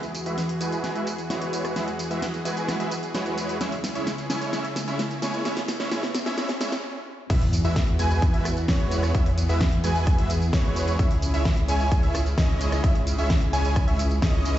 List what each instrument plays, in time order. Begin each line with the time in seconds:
Already playing: supersaw synth E2 E3 F#4 G#4, riser
0.03 open hi-hat, tambourine
0.15 open hi-hat, tambourine
0.26 supersaw synth G#3 E4 F#4 B4 E5, closed hi-hat, tambourine
0.38 snare, closed hi-hat, tambourine
0.49 closed hi-hat, tambourine
0.61 supersaw synth G#3 E4 F#4 B4 G#5, open hi-hat, tambourine
0.72 closed hi-hat, tambourine
0.84 snare, closed hi-hat, tambourine
0.95 supersaw synth G#3 E4 F#4 B4 E5, closed hi-hat, tambourine
1.07 open hi-hat, tambourine
1.18 closed hi-hat, tambourine
1.30 supersaw synth G#3 E4 F#4 B4 C#5, snare, closed hi-hat, tambourine
1.42 closed hi-hat, tambourine
1.53 open hi-hat, tambourine
1.65 cross-stick, closed hi-hat, tambourine
1.76 supersaw synth G#3 E4 F#4 B4 E5, snare, closed hi-hat, tambourine
1.88 closed hi-hat, tambourine
1.99 open hi-hat, tambourine
2.11 supersaw synth G#3 E4 F#4 B4 E5, closed hi-hat, tambourine
2.22 snare, closed hi-hat, tambourine
2.34 closed hi-hat, tambourine
2.45 supersaw synth G#3 E4 F#4 B4 G#5, open hi-hat, tambourine
2.57 closed hi-hat, tambourine
2.68 cross-stick, snare, closed hi-hat, tambourine
2.80 supersaw synth G#3 E4 F#4 B4 E5, closed hi-hat, tambourine
2.91 open hi-hat, tambourine
3.03 closed hi-hat, tambourine
3.15 supersaw synth G#3 E4 F#4 B4 C#5, snare, closed hi-hat, tambourine
3.26 closed hi-hat, tambourine
3.38 open hi-hat, tambourine
3.49 closed hi-hat, tambourine
3.61 supersaw synth C#2 C#3 G#3 C#4 E4 C#5 E5, snare, closed hi-hat, tambourine
3.72 open hi-hat, tambourine
3.84 snare, open hi-hat, tambourine
3.95 supersaw synth G#3 C#4 E4 C#5 E5, closed hi-hat, tambourine
4.07 snare, closed hi-hat, tambourine
4.18 closed hi-hat, tambourine
4.30 supersaw synth G#3 C#4 E4 C#5 G#5, snare, open hi-hat, tambourine
4.41 closed hi-hat, tambourine
4.53 supersaw synth G#3 C#4 E4 C#5 E5, snare, closed hi-hat, tambourine
4.65 closed hi-hat, tambourine
4.76 snare, open hi-hat, tambourine
4.88 supersaw synth G#3 C#4 E4 C#5 E5, closed hi-hat, tambourine
4.99 snare, closed hi-hat, tambourine
5.11 closed hi-hat, tambourine
5.22 supersaw synth G#3 C#4 E4 C#5 G#5, snare, open hi-hat, tambourine
5.34 closed hi-hat, tambourine
5.45 supersaw synth G#3 C#4 E4 C#5 E5, snare, closed hi-hat, tambourine
5.57 snare, open hi-hat, tambourine
5.68 snare, open hi-hat, tambourine
5.80 supersaw synth G#3 C#4 E4 C#5 E5, snare, closed hi-hat, tambourine
5.91 supersaw synth G#3 C#4 E4 C#5 E5, snare, closed hi-hat, tambourine
6.03 snare, closed hi-hat, tambourine
6.15 snare, open hi-hat, tambourine
6.26 supersaw synth G#3 C#4 E4 C#5 E5, snare, closed hi-hat, tambourine
6.38 supersaw synth G#3 C#4 E4 C#5 E5, snare, closed hi-hat, tambourine
6.49 snare, closed hi-hat, tambourine
6.61 supersaw synth G#3 C#4 E4 C#5 E5, snare, open hi-hat, tambourine
6.72 snare, closed hi-hat, tambourine
7.30 detuned saw bass E2, supersaw synth E3 G#3 B3 E4 F#4 G#4 B4 E5, analog synth lead E5, kick, closed hi-hat, crash, tambourine, sub drop
7.42 open hi-hat
7.53 open hi-hat, tambourine
7.65 detuned saw bass E2, supersaw synth G#3 E4 F#4 B4 E5, analog synth lead E5, closed hi-hat, tambourine
7.76 kick, snare, closed hi-hat, tambourine
7.88 closed hi-hat
7.99 detuned saw bass E2, supersaw synth G#3 E4 F#4 B4 G#5, analog synth lead G#5, open hi-hat, tambourine
8.11 closed hi-hat, tambourine
8.22 kick, closed hi-hat, tambourine
8.34 detuned saw bass E2, supersaw synth G#3 E4 F#4 B4 E5, analog synth lead E5, closed hi-hat
8.45 cross-stick, open hi-hat, tambourine
8.57 closed hi-hat, tambourine
8.68 detuned saw bass E2, supersaw synth G#3 E4 F#4 B4 C#5, analog synth lead C#5, kick, snare, closed hi-hat, tambourine
8.80 closed hi-hat
8.91 open hi-hat, tambourine
9.03 cross-stick, closed hi-hat, tambourine
9.14 detuned saw bass E2, supersaw synth G#3 E4 F#4 B4 E5, analog synth lead E5, kick, closed hi-hat, tambourine
9.26 open hi-hat
9.38 open hi-hat, tambourine
9.49 detuned saw bass E2, supersaw synth G#3 E4 F#4 B4 E5, analog synth lead E5, closed hi-hat, tambourine
9.61 kick, snare, closed hi-hat, tambourine
9.72 closed hi-hat
9.84 detuned saw bass E2, supersaw synth G#3 E4 F#4 B4 G#5, analog synth lead G#5, open hi-hat, tambourine
9.95 closed hi-hat, tambourine
10.07 kick, cross-stick, closed hi-hat, tambourine
10.18 detuned saw bass E2, supersaw synth G#3 E4 F#4 B4 E5, analog synth lead E5, closed hi-hat
10.30 open hi-hat, tambourine
10.42 closed hi-hat, tambourine
10.53 detuned saw bass E2, supersaw synth G#3 E4 F#4 B4 C#5, analog synth lead C#5, kick, snare, closed hi-hat, tambourine
10.65 closed hi-hat
10.76 open hi-hat, tambourine
10.88 closed hi-hat, tambourine
10.99 detuned saw bass C#2, supersaw synth C#3 G#3 C#4 E4 C#5, analog synth lead E5, kick, closed hi-hat, tambourine
11.11 open hi-hat
11.22 open hi-hat, tambourine
11.34 detuned saw bass C#2, supersaw synth G#3 C#4 E4 C#5 E5, analog synth lead E5, closed hi-hat, tambourine
11.45 kick, snare, closed hi-hat, tambourine
11.57 closed hi-hat
11.68 detuned saw bass C#2, supersaw synth G#3 C#4 E4 C#5 G#5, analog synth lead G#5, open hi-hat, tambourine
11.80 closed hi-hat, tambourine
11.92 kick, closed hi-hat, tambourine
12.03 detuned saw bass C#2, supersaw synth G#3 C#4 E4 C#5 E5, analog synth lead E5, closed hi-hat
12.15 cross-stick, open hi-hat, tambourine
12.26 closed hi-hat, tambourine
12.38 detuned saw bass C#2, supersaw synth G#3 C#4 E4 C#5 D#5, analog synth lead D#5, kick, snare, closed hi-hat, tambourine
12.49 closed hi-hat
12.61 open hi-hat, tambourine
12.72 cross-stick, closed hi-hat, tambourine
12.84 detuned saw bass C#2, supersaw synth G#3 C#4 E4 C#5 E5, analog synth lead E5, kick, closed hi-hat, tambourine
12.95 open hi-hat
13.07 open hi-hat, tambourine
13.18 detuned saw bass C#2, supersaw synth G#3 C#4 E4 C#5 E5, analog synth lead E5, closed hi-hat, tambourine
13.30 kick, snare, closed hi-hat, tambourine
13.42 closed hi-hat
13.53 detuned saw bass C#2, supersaw synth G#3 C#4 E4 C#5 G#5, analog synth lead G#5, open hi-hat, tambourine
13.65 closed hi-hat, tambourine
13.76 kick, cross-stick, closed hi-hat, tambourine
13.88 detuned saw bass C#2, supersaw synth G#3 C#4 E4 C#5 E5, analog synth lead E5, closed hi-hat
13.99 open hi-hat, tambourine
14.11 closed hi-hat, tambourine
14.22 detuned saw bass C#2, supersaw synth G#3 C#4 E4 C#5 D#5, analog synth lead D#5, kick, snare, closed hi-hat, tambourine
14.34 closed hi-hat
14.45 open hi-hat, tambourine